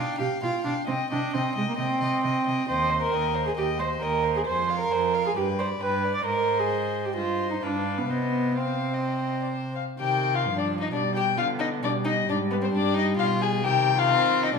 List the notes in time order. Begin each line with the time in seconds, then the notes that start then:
Already playing: D4 F5
0.00 G5
0.18 B2 G4 F5 G5
0.42 B2 F4 F5 G5
0.65 B2 D4 F5 G5
0.87 C3 C4 D#5 G5
1.10 C3 D4 D#5 G5
1.34 C3 C4 D#5 G5
1.56 C3 G#3 D#5 G5
1.69 A#3
1.77 C3 C4 D#5 G5
2.01 C3 D#5 G5
2.23 C3 D#5 G5
2.46 C3 D#5 G5
2.68 D#2 C5 D#5 G5
2.90 C5 D#5
3.02 A#4
3.11 D#2 D#5 G5
3.34 C5 D#5
3.47 G#4
3.57 D#2 G4 D#5 G5
3.79 C5 D#5
4.01 D#2 A#4 D#5 G5
4.23 C5 D#5
4.37 G#4
4.46 F2 C5 G#5
4.68 F5 C6
4.80 A#4
4.91 F2 C5 G#5
5.14 F5 C6
5.26 G#4
5.36 G2 G4 B4 G5
5.59 C5 D5 B5
5.80 G2 B4 G5
6.03 D5 B5
6.15 D5
6.25 G#2 A#4 C5 D#5
6.59 G#4
7.05 G4
7.16 G2 F4 C5 D#5
7.51 D#4
7.62 G2 D4 B4 F5
7.98 B3
8.09 C3 B3 C5 D#5
8.57 C4 C5 F5
8.94 D#5
9.42 D5
9.52 C5
9.76 F5
9.99 C3 D#3 G4 G5
10.35 F4 F5
10.46 G2 F3
10.57 D4 D5
10.80 D#4 D#5
10.92 B2 G3 D4 D5
11.15 G4 G5
11.37 D3 B3 F4 F5
11.59 D#4 D#5
11.83 B2 G3 D4 D5
12.05 D#4 D#5
12.28 G#2 D4 D5
12.51 B3 B4
12.62 C4 C5
12.71 G2 D4
12.75 D5
12.94 D#4
12.98 D#5
13.17 B2 F4 F5
13.42 G#4 G#5
13.64 C3 D#3 G4 G5
13.97 F4 F5
14.10 C4
14.43 D#4 D#5
14.54 B2 G3 D4 D5